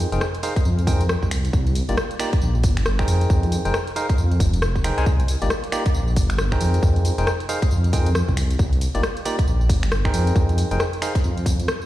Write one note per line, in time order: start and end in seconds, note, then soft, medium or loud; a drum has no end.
0.12 0.19 F1 loud
0.12 0.23 D#4 medium
0.12 0.24 G#4 medium
0.12 0.24 A#4 medium
0.12 0.23 C5 medium
0.12 0.23 G5 medium
0.12 closed hi-hat medium
0.12 tambourine soft
0.21 cross-stick loud
0.21 tambourine soft
0.35 closed hi-hat medium
0.35 tambourine soft
0.43 0.53 D#4 medium
0.43 0.53 G#4 medium
0.43 0.53 A#4 medium
0.43 0.53 C5 medium
0.43 0.53 F5 loud
0.43 open hi-hat loud
0.43 tambourine medium
0.56 kick loud
0.56 closed hi-hat medium
0.56 tambourine soft
0.65 1.17 F2 medium
0.65 tambourine soft
0.79 closed hi-hat soft
0.79 tambourine soft
0.87 1.02 D#4 medium
0.87 1.02 G#4 medium
0.87 1.02 A#4 medium
0.87 1.02 C5 medium
0.87 1.02 G5 loud
0.87 kick loud
0.87 open hi-hat loud
0.87 tambourine medium
1.01 closed hi-hat medium
1.01 tambourine soft
1.09 cross-stick loud
1.09 tambourine soft
1.23 1.50 C2 loud
1.23 kick medium
1.23 tambourine soft
1.31 finger snap medium
1.31 open hi-hat loud
1.31 tambourine medium
1.45 closed hi-hat medium
1.45 tambourine soft
1.53 1.83 C2 loud
1.53 kick loud
1.53 tambourine soft
1.67 closed hi-hat soft
1.67 tambourine soft
1.75 open hi-hat loud
1.75 tambourine medium
1.89 1.96 G1 loud
1.89 1.95 A#3 medium
1.89 1.95 D#4 medium
1.89 1.95 F4 medium
1.89 1.95 G4 medium
1.89 1.95 D5 medium
1.89 closed hi-hat medium
1.89 tambourine soft
1.97 cross-stick loud
1.97 tambourine soft
2.11 closed hi-hat soft
2.11 tambourine soft
2.19 2.29 A#3 loud
2.19 2.29 D#4 medium
2.19 2.29 F4 medium
2.19 2.29 G4 medium
2.19 2.29 D5 loud
2.19 finger snap medium
2.19 open hi-hat loud
2.19 tambourine medium
2.33 kick loud
2.33 closed hi-hat medium
2.33 tambourine soft
2.42 2.65 A#1 medium
2.42 tambourine soft
2.55 tambourine soft
2.63 3.05 G1 medium
2.63 kick loud
2.63 open hi-hat loud
2.63 tambourine medium
2.77 finger snap medium
2.77 closed hi-hat medium
2.77 tambourine soft
2.86 cross-stick loud
2.86 tambourine soft
2.99 3.62 D#4 medium
2.99 3.62 G#4 medium
2.99 3.62 A#4 medium
2.99 3.62 C5 medium
2.99 3.62 G5 medium
2.99 finger snap medium
2.99 kick medium
2.99 tambourine soft
3.08 3.26 F2 medium
3.08 open hi-hat loud
3.08 tambourine medium
3.21 closed hi-hat medium
3.21 tambourine soft
3.30 3.59 F2 loud
3.30 kick loud
3.30 tambourine soft
3.43 closed hi-hat soft
3.43 tambourine soft
3.52 open hi-hat loud
3.52 tambourine medium
3.65 3.72 F1 loud
3.65 3.76 D#4 medium
3.65 3.76 G#4 medium
3.65 3.76 A#4 medium
3.65 3.76 C5 medium
3.65 3.76 G5 medium
3.65 closed hi-hat medium
3.65 tambourine soft
3.74 cross-stick loud
3.74 tambourine soft
3.87 closed hi-hat medium
3.87 tambourine soft
3.96 4.06 D#4 medium
3.96 4.06 G#4 medium
3.96 4.06 A#4 medium
3.96 4.06 C5 medium
3.96 4.06 F5 loud
3.96 open hi-hat loud
3.96 tambourine medium
4.09 kick loud
4.09 closed hi-hat medium
4.09 tambourine soft
4.18 4.40 F2 medium
4.18 tambourine soft
4.32 closed hi-hat soft
4.32 tambourine soft
4.40 4.92 F1 loud
4.40 kick loud
4.40 open hi-hat loud
4.40 tambourine medium
4.53 closed hi-hat medium
4.53 tambourine soft
4.62 cross-stick loud
4.62 tambourine soft
4.76 kick medium
4.76 tambourine soft
4.84 4.96 D#4 medium
4.84 4.96 G#4 medium
4.84 4.96 A#4 medium
4.84 4.96 C5 medium
4.84 4.96 G5 medium
4.84 finger snap medium
4.84 open hi-hat loud
4.84 tambourine medium
4.98 5.04 C2 medium
4.98 5.04 D#4 medium
4.98 5.04 G#4 medium
4.98 5.04 A#4 medium
4.98 5.04 C5 medium
4.98 5.04 G#5 loud
4.98 closed hi-hat medium
4.98 tambourine soft
5.06 5.36 C2 loud
5.06 kick loud
5.06 tambourine soft
5.20 closed hi-hat soft
5.20 tambourine soft
5.28 open hi-hat loud
5.28 tambourine medium
5.42 5.49 G1 loud
5.42 5.48 A#3 medium
5.42 5.48 D#4 medium
5.42 5.48 F4 medium
5.42 5.48 G4 medium
5.42 5.48 D5 medium
5.42 closed hi-hat medium
5.42 tambourine soft
5.50 cross-stick loud
5.50 tambourine soft
5.64 closed hi-hat medium
5.64 tambourine soft
5.72 5.82 A#3 loud
5.72 5.82 D#4 medium
5.72 5.82 F4 medium
5.72 5.82 G4 medium
5.72 5.82 D5 loud
5.72 finger snap medium
5.72 open hi-hat loud
5.72 tambourine medium
5.86 kick loud
5.86 closed hi-hat medium
5.86 tambourine soft
5.94 6.18 A#1 medium
5.94 tambourine soft
6.08 tambourine soft
6.16 6.58 G1 medium
6.16 kick loud
6.16 open hi-hat loud
6.16 tambourine medium
6.30 finger snap medium
6.30 closed hi-hat medium
6.30 tambourine soft
6.38 cross-stick loud
6.38 tambourine soft
6.52 7.15 D#4 medium
6.52 7.15 G#4 medium
6.52 7.15 A#4 medium
6.52 7.15 C5 medium
6.52 7.15 G5 medium
6.52 finger snap medium
6.52 kick medium
6.52 tambourine soft
6.61 6.79 F2 medium
6.61 open hi-hat loud
6.61 tambourine medium
6.74 closed hi-hat medium
6.74 tambourine soft
6.83 7.12 F2 loud
6.83 kick loud
6.83 tambourine soft
6.96 closed hi-hat soft
6.96 tambourine soft
7.05 open hi-hat loud
7.05 tambourine medium
7.18 7.25 F1 loud
7.18 7.29 D#4 medium
7.18 7.29 G#4 medium
7.18 7.29 A#4 medium
7.18 7.29 C5 medium
7.18 7.29 G5 medium
7.18 closed hi-hat medium
7.18 tambourine soft
7.27 cross-stick loud
7.27 tambourine soft
7.40 closed hi-hat medium
7.40 tambourine soft
7.49 7.59 D#4 medium
7.49 7.59 G#4 medium
7.49 7.59 A#4 medium
7.49 7.59 C5 medium
7.49 7.59 F5 loud
7.49 open hi-hat loud
7.49 tambourine medium
7.62 kick loud
7.62 closed hi-hat medium
7.62 tambourine soft
7.71 8.22 F2 medium
7.71 tambourine soft
7.84 closed hi-hat soft
7.84 tambourine soft
7.93 8.08 D#4 medium
7.93 8.08 G#4 medium
7.93 8.08 A#4 medium
7.93 8.08 C5 medium
7.93 8.08 G5 loud
7.93 kick loud
7.93 open hi-hat loud
7.93 tambourine medium
8.06 closed hi-hat medium
8.06 tambourine soft
8.15 cross-stick loud
8.15 tambourine soft
8.28 8.56 C2 loud
8.28 kick medium
8.28 tambourine soft
8.37 finger snap medium
8.37 open hi-hat loud
8.37 tambourine medium
8.51 closed hi-hat medium
8.51 tambourine soft
8.59 8.89 C2 loud
8.59 kick loud
8.59 tambourine soft
8.73 closed hi-hat soft
8.73 tambourine soft
8.81 open hi-hat loud
8.81 tambourine medium
8.95 9.02 G1 loud
8.95 9.01 A#3 medium
8.95 9.01 D#4 medium
8.95 9.01 F4 medium
8.95 9.01 G4 medium
8.95 9.01 D5 medium
8.95 closed hi-hat medium
8.95 tambourine soft
9.03 cross-stick loud
9.03 tambourine soft
9.17 closed hi-hat medium
9.17 tambourine soft
9.25 9.35 A#3 loud
9.25 9.35 D#4 medium
9.25 9.35 F4 medium
9.25 9.35 G4 medium
9.25 9.35 D5 loud
9.25 open hi-hat loud
9.25 tambourine medium
9.39 kick loud
9.39 closed hi-hat medium
9.39 tambourine soft
9.48 9.71 A#1 medium
9.48 tambourine soft
9.61 tambourine soft
9.69 10.11 G1 medium
9.69 kick loud
9.69 open hi-hat loud
9.69 tambourine medium
9.83 finger snap medium
9.83 closed hi-hat medium
9.83 tambourine soft
9.92 cross-stick loud
9.92 tambourine soft
10.05 10.68 D#4 medium
10.05 10.68 G#4 medium
10.05 10.68 A#4 medium
10.05 10.68 C5 medium
10.05 10.68 G5 medium
10.05 finger snap medium
10.05 kick medium
10.05 tambourine soft
10.14 10.32 F2 medium
10.14 open hi-hat loud
10.14 tambourine medium
10.27 closed hi-hat medium
10.27 tambourine soft
10.36 10.65 F2 loud
10.36 kick loud
10.36 tambourine soft
10.49 closed hi-hat soft
10.49 tambourine soft
10.58 open hi-hat loud
10.58 tambourine medium
10.71 10.78 F1 loud
10.71 10.82 D#4 medium
10.71 10.82 G#4 medium
10.71 10.82 A#4 medium
10.71 10.82 C5 medium
10.71 10.82 G5 medium
10.71 closed hi-hat medium
10.71 tambourine soft
10.80 cross-stick loud
10.80 tambourine soft
10.93 closed hi-hat medium
10.93 tambourine soft
11.02 11.12 D#4 medium
11.02 11.12 G#4 medium
11.02 11.12 A#4 medium
11.02 11.12 C5 medium
11.02 11.12 F5 loud
11.02 finger snap medium
11.02 open hi-hat loud
11.02 tambourine medium
11.15 kick loud
11.15 closed hi-hat medium
11.15 tambourine soft
11.24 11.68 F2 medium
11.24 tambourine soft
11.37 closed hi-hat soft
11.37 tambourine soft
11.46 kick loud
11.46 open hi-hat loud
11.46 tambourine medium
11.60 closed hi-hat medium
11.60 tambourine soft
11.68 cross-stick loud
11.68 tambourine soft
11.82 tambourine soft